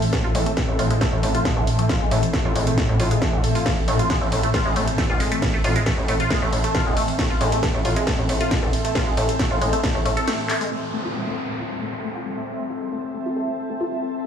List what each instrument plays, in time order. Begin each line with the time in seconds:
Already playing: synth drone A2 E3, ambient pad C4 A4 E5 A5
0.02 open hi-hat
0.13 synth arpeggio sound A3, kick, snare, closed hi-hat
0.24 synth arpeggio sound F4
0.35 analog synth bass A1, synth arpeggio sound G#3, open hi-hat
0.46 synth arpeggio sound A3, closed hi-hat
0.57 kick, snare, closed hi-hat
0.68 analog synth bass A1, synth arpeggio sound A3
0.79 analog synth bass A1, synth arpeggio sound F4, open hi-hat
0.90 synth arpeggio sound G#3, closed hi-hat
1.01 synth arpeggio sound A3, kick, snare, closed hi-hat
1.13 analog synth bass A1
1.23 analog synth bass A1, synth arpeggio sound A3, open hi-hat
1.35 synth arpeggio sound F4, closed hi-hat
1.45 synth arpeggio sound G#3, kick, snare, closed hi-hat
1.57 analog synth bass E1, synth arpeggio sound A3
1.67 open hi-hat
1.79 synth arpeggio sound A3, closed hi-hat
1.89 synth arpeggio sound F4, kick, snare, closed hi-hat
2.01 synth arpeggio sound G#3
2.11 analog synth bass A1, synth arpeggio sound A3, open hi-hat
2.23 closed hi-hat
2.33 synth arpeggio sound A3, kick, snare, closed hi-hat
2.45 analog synth bass A1, synth arpeggio sound F4
2.56 analog synth bass A1, synth arpeggio sound G#3, open hi-hat
2.67 synth arpeggio sound A3, closed hi-hat
2.78 kick, snare, closed hi-hat
2.89 analog synth bass A1, synth arpeggio sound A3
3.00 analog synth bass A1, synth arpeggio sound F4, open hi-hat
3.11 synth arpeggio sound G#3, closed hi-hat
3.22 synth arpeggio sound A3, kick, snare, closed hi-hat
3.33 analog synth bass E1
3.44 synth arpeggio sound A3, open hi-hat
3.55 synth arpeggio sound F4, open hi-hat
3.66 synth arpeggio sound A3, kick, snare, closed hi-hat, ride
3.88 analog synth bass A1, synth arpeggio sound A3, open hi-hat
3.99 synth arpeggio sound F4, closed hi-hat
4.10 synth arpeggio sound G#3, kick, snare, closed hi-hat, ride
4.21 analog synth bass A1, synth arpeggio sound A3
4.32 analog synth bass A1, open hi-hat
4.43 synth arpeggio sound A3, closed hi-hat
4.54 synth arpeggio sound F4, kick, snare, closed hi-hat, ride
4.65 analog synth bass A1, synth arpeggio sound G#3
4.76 analog synth bass A1, synth arpeggio sound A3, open hi-hat
4.88 closed hi-hat
4.98 synth arpeggio sound A3, kick, snare, closed hi-hat, ride
5.10 analog synth bass E1, synth arpeggio sound F4
5.20 synth arpeggio sound G#3, open hi-hat
5.32 synth arpeggio sound A3, closed hi-hat
5.42 kick, snare, closed hi-hat, ride
5.54 synth arpeggio sound A3
5.64 analog synth bass A1, synth arpeggio sound F4, open hi-hat
5.76 synth arpeggio sound G#3, closed hi-hat
5.86 synth arpeggio sound A3, kick, snare, closed hi-hat, ride
5.98 analog synth bass A1
6.08 analog synth bass A1, synth arpeggio sound A3, open hi-hat
6.20 synth arpeggio sound F4, closed hi-hat
6.30 synth arpeggio sound G#3, kick, snare, closed hi-hat, ride
6.42 analog synth bass A1, synth arpeggio sound A3
6.52 analog synth bass A1, open hi-hat
6.64 synth arpeggio sound A3, closed hi-hat
6.75 synth arpeggio sound F4, kick, snare, closed hi-hat, ride
6.86 analog synth bass E1, synth arpeggio sound G#3
6.97 synth arpeggio sound A3, open hi-hat
7.08 open hi-hat
7.19 synth arpeggio sound A3, kick, snare, closed hi-hat, ride
7.30 synth arpeggio sound F4
7.41 analog synth bass A1, synth arpeggio sound G#3, open hi-hat
7.52 synth arpeggio sound A3, closed hi-hat
7.63 kick, snare, closed hi-hat, ride
7.74 analog synth bass A1, synth arpeggio sound A3
7.85 analog synth bass A1, synth arpeggio sound F4, open hi-hat
7.96 synth arpeggio sound G#3, closed hi-hat
8.07 synth arpeggio sound A3, kick, snare, closed hi-hat, ride
8.19 analog synth bass A1
8.29 analog synth bass A1, synth arpeggio sound A3, open hi-hat
8.41 synth arpeggio sound F4, closed hi-hat
8.51 synth arpeggio sound G#3, kick, snare, closed hi-hat, ride
8.63 analog synth bass E1, synth arpeggio sound A3
8.73 open hi-hat
8.85 synth arpeggio sound A3, closed hi-hat
8.95 synth arpeggio sound F4, kick, snare, closed hi-hat, ride
9.07 synth arpeggio sound G#3
9.17 analog synth bass A1, synth arpeggio sound A3, open hi-hat
9.29 closed hi-hat
9.39 synth arpeggio sound A3, kick, snare, closed hi-hat, ride
9.51 analog synth bass A1, synth arpeggio sound F4
9.61 analog synth bass A1, synth arpeggio sound G#3, open hi-hat
9.73 synth arpeggio sound A3, closed hi-hat
9.84 kick, snare, closed hi-hat, ride
9.95 analog synth bass A1, synth arpeggio sound A3
10.05 analog synth bass A1, synth arpeggio sound A3, open hi-hat
10.17 synth arpeggio sound A4, closed hi-hat
10.28 synth arpeggio sound A3, snare, closed hi-hat, ride
10.50 synth arpeggio sound A3, clap, open hi-hat
10.61 synth arpeggio sound G#3, open hi-hat
10.72 synth arpeggio sound A3, ambient pad C4, downlifter
10.94 synth arpeggio sound A3
11.05 synth arpeggio sound F4
11.16 synth arpeggio sound G#3
11.21 ambient pad A4
11.27 synth arpeggio sound A3
11.49 synth arpeggio sound A3
11.60 synth arpeggio sound F4
11.71 synth arpeggio sound G#3
11.82 synth arpeggio sound A3
11.90 ambient pad E5
12.04 synth arpeggio sound A3
12.15 synth arpeggio sound F4
12.26 synth arpeggio sound G#3
12.37 synth arpeggio sound A3
12.52 ambient pad A5
12.60 synth arpeggio sound A3
12.70 synth arpeggio sound F4
12.82 synth arpeggio sound G#3
12.92 synth arpeggio sound A3
13.14 synth arpeggio sound A3
13.26 synth arpeggio sound F4
13.36 synth arpeggio sound G#3
13.48 synth arpeggio sound A3
13.70 synth arpeggio sound A3
13.81 synth arpeggio sound F4
13.92 synth arpeggio sound G#3
14.03 synth arpeggio sound A3